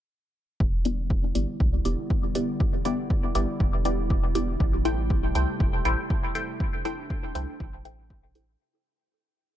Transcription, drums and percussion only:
0.60 kick
0.85 closed hi-hat
1.10 kick
1.35 closed hi-hat
1.60 kick
1.85 closed hi-hat
2.10 kick
2.35 closed hi-hat
2.60 kick
2.85 closed hi-hat
3.10 kick
3.35 closed hi-hat
3.60 kick
3.85 closed hi-hat
4.10 kick
4.35 closed hi-hat
4.60 kick
4.85 closed hi-hat
5.10 kick
5.35 closed hi-hat
5.60 kick
5.85 closed hi-hat
6.10 kick
6.35 closed hi-hat
6.60 kick
6.85 closed hi-hat
7.10 kick
7.35 closed hi-hat
7.60 kick
7.85 closed hi-hat
8.10 kick
8.35 closed hi-hat

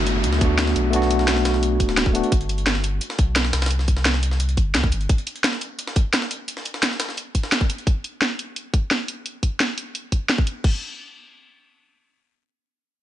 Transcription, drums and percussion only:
0.07 closed hi-hat
0.24 closed hi-hat
0.33 snare
0.41 kick, closed hi-hat
0.59 snare, closed hi-hat
0.67 snare
0.76 closed hi-hat
0.93 closed hi-hat
1.02 snare
1.10 closed hi-hat
1.19 snare
1.28 snare, closed hi-hat
1.37 snare
1.45 snare, closed hi-hat
1.54 snare
1.63 closed hi-hat
1.80 kick, closed hi-hat
1.89 snare
1.97 snare, closed hi-hat
2.06 kick
2.15 closed hi-hat
2.24 closed hi-hat
2.32 kick, closed hi-hat
2.41 closed hi-hat
2.49 closed hi-hat
2.58 closed hi-hat
2.66 snare, closed hi-hat
2.75 snare
2.84 closed hi-hat
3.01 closed hi-hat
3.10 snare
3.19 kick, closed hi-hat
3.36 snare, closed hi-hat
3.45 snare
3.53 snare, closed hi-hat
3.62 snare, closed hi-hat
3.66 snare, closed hi-hat
3.70 closed hi-hat
3.79 snare
3.88 kick, closed hi-hat
3.97 snare
4.05 snare, closed hi-hat
4.14 snare
4.23 closed hi-hat
4.31 snare
4.40 closed hi-hat
4.49 closed hi-hat
4.57 kick, closed hi-hat
4.74 snare, closed hi-hat
4.84 kick
4.92 closed hi-hat
5.01 closed hi-hat
5.09 kick, closed hi-hat
5.18 closed hi-hat
5.27 closed hi-hat
5.36 closed hi-hat
5.44 snare, closed hi-hat
5.53 snare
5.61 closed hi-hat
5.79 closed hi-hat
5.87 snare
5.96 kick, closed hi-hat
6.13 snare, closed hi-hat
6.22 snare
6.31 closed hi-hat
6.48 closed hi-hat
6.57 snare
6.65 closed hi-hat
6.74 snare
6.83 snare, closed hi-hat
6.91 snare
7.00 snare, closed hi-hat
7.09 snare
7.17 closed hi-hat
7.35 kick, closed hi-hat
7.43 snare
7.52 snare, closed hi-hat
7.61 kick
7.70 closed hi-hat
7.78 closed hi-hat
7.87 kick, closed hi-hat
8.04 closed hi-hat
8.22 snare, closed hi-hat
8.39 closed hi-hat
8.56 closed hi-hat
8.74 kick, closed hi-hat
8.91 snare, closed hi-hat
9.08 closed hi-hat
9.26 closed hi-hat
9.43 kick, closed hi-hat
9.60 snare, closed hi-hat
9.78 closed hi-hat
9.95 closed hi-hat
10.12 kick, closed hi-hat
10.29 snare, closed hi-hat
10.38 kick
10.47 closed hi-hat
10.64 kick, crash

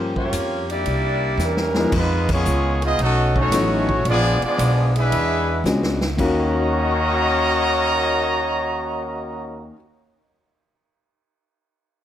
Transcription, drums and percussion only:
0.16 kick
0.33 kick, hi-hat pedal, ride
0.70 ride
0.86 kick, ride
1.39 snare, hi-hat pedal
1.57 snare
1.74 snare
1.92 kick, crash
2.29 kick, crash
2.45 hi-hat pedal
2.82 ride
2.99 kick, ride
3.36 kick
3.52 kick, snare, hi-hat pedal, ride
3.89 kick
4.05 kick, ride
4.42 ride
4.59 kick, hi-hat pedal, ride
4.96 ride
5.12 kick, ride
5.65 snare, hi-hat pedal
5.83 snare
6.01 snare
6.19 kick, crash

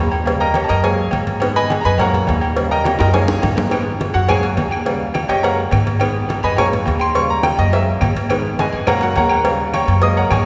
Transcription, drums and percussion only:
0.12 high conga, low agogo
0.26 cowbell, high conga, low agogo
0.40 high conga
0.54 cowbell, high conga, low agogo
0.68 cowbell, high conga, low agogo
0.83 cowbell, high conga
0.98 high conga
1.11 cowbell, high conga, low agogo
1.27 cowbell, high conga
1.40 cowbell, high conga, low agogo
1.56 high conga
1.70 cowbell, high conga, low agogo
1.84 high conga, low agogo
1.98 cowbell, high conga, low conga, low agogo
2.13 cowbell, high conga, low conga
2.27 cowbell, high conga, low timbale, low agogo
2.41 high conga, low agogo
2.56 cowbell, high conga, low agogo
2.71 high conga
2.84 cowbell, high bongo, high conga, low agogo
2.99 cowbell, high bongo, high timbale, low agogo
3.13 cowbell, low bongo, high conga, high timbale
3.28 low bongo, high timbale
3.42 cowbell, low bongo, high conga, low agogo
3.57 cowbell, low bongo, low timbale
3.71 cowbell, high conga, low agogo, claves
3.87 high conga
4.00 cowbell, high conga, low agogo
4.14 high conga, low agogo
4.28 cowbell, high conga, low conga, low agogo, claves
4.43 cowbell, high conga
4.57 cowbell, high conga, low timbale, low agogo
4.71 high conga, low agogo, claves
4.86 cowbell, high conga, low agogo
5.01 high conga
5.14 cowbell, high conga, low agogo, claves
5.29 cowbell, high conga, low agogo
5.44 cowbell, high conga
5.58 high conga
5.71 cowbell, high conga, low timbale, low agogo, claves
5.87 cowbell, high conga
6.00 cowbell, high conga, low agogo, claves
6.16 high conga
6.29 cowbell, high conga, low agogo
6.43 high conga, low agogo
6.56 cowbell, high conga, low conga, low agogo, claves
6.73 cowbell, high conga, low conga
6.86 cowbell, high conga, low timbale, low agogo
7.00 high conga, low agogo, claves
7.15 cowbell, high conga, low agogo
7.29 high conga
7.43 cowbell, high conga, low agogo, claves
7.58 cowbell, high conga, low agogo
7.72 cowbell, high conga
7.87 high conga
8.01 cowbell, high conga, low timbale, low agogo, claves
8.15 cowbell, high conga
8.29 cowbell, high conga, low agogo, claves
8.45 high conga
8.59 cowbell, high conga, low agogo
8.73 high conga, low agogo
8.87 cowbell, high conga, low conga, low agogo, claves
9.01 cowbell, high conga
9.16 cowbell, high conga, low timbale, low agogo
9.29 high conga, low agogo, claves
9.45 cowbell, high conga, low agogo
9.59 high conga
9.73 cowbell, high conga, low agogo, claves
9.87 cowbell, high conga, low agogo
10.02 cowbell, high conga
10.17 high conga
10.30 cowbell, high conga, low timbale, low agogo, claves

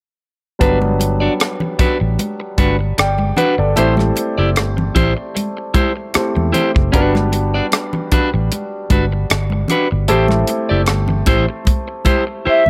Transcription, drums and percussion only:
0.61 kick, closed hi-hat
0.82 high conga
1.00 closed hi-hat, muted conga
1.40 cross-stick, closed hi-hat
1.60 low conga
1.79 kick, closed hi-hat, low conga
2.19 closed hi-hat, muted conga, high conga
2.58 kick, closed hi-hat, muted conga, high conga
2.98 cross-stick, closed hi-hat
3.18 high conga
3.37 closed hi-hat, muted conga, low conga
3.76 closed hi-hat, muted conga
3.97 cross-stick, high conga
4.16 closed hi-hat, muted conga
4.56 cross-stick, closed hi-hat, muted conga
4.78 low conga
4.96 kick, closed hi-hat, low conga
5.37 closed hi-hat, muted conga, high conga
5.74 kick, closed hi-hat, muted conga, high conga
6.14 cross-stick, closed hi-hat
6.36 high conga
6.54 closed hi-hat, low conga
6.76 kick
6.94 kick, closed hi-hat, muted conga
7.15 cross-stick, high conga
7.32 closed hi-hat, muted conga
7.72 cross-stick, closed hi-hat, muted conga
7.93 low conga
8.12 kick, closed hi-hat, low conga
8.52 closed hi-hat, high conga
8.90 kick, closed hi-hat, muted conga, high conga
9.30 cross-stick, closed hi-hat, muted conga
9.50 high conga
9.68 closed hi-hat, muted conga, low conga
10.08 closed hi-hat, muted conga
10.28 cross-stick, high conga
10.47 closed hi-hat, muted conga
10.86 cross-stick, closed hi-hat
11.08 low conga
11.26 kick, closed hi-hat, muted conga, low conga
11.65 kick, closed hi-hat, high conga
12.05 kick, closed hi-hat, high conga
12.66 high conga

